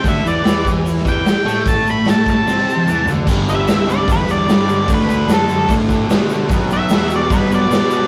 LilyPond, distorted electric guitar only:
\new Staff \with { instrumentName = "Distorted electric guitar" } { \clef bass \time 4/4 \key d \mixolydian \tempo 4 = 149 d8 e8 e4. e8 r8 a8~ | a2 c'4 e8 d8 | <g, d g>8 <g, d g>8 <g, d g>8 <g, d g>8 <g, d g>8 <g, d g>8 <g, d g>8 <g, d g>8 | <d a d'>8 <d a d'>8 <d a d'>8 <d a d'>8 <d a d'>8 <d a d'>8 <d a d'>8 <d a d'>8 |
<b, fis b>8 <b, fis b>8 <b, fis b>8 <b, fis b>8 <b, fis b>8 <b, fis b>8 <b, fis b>8 <b, fis b>8 | }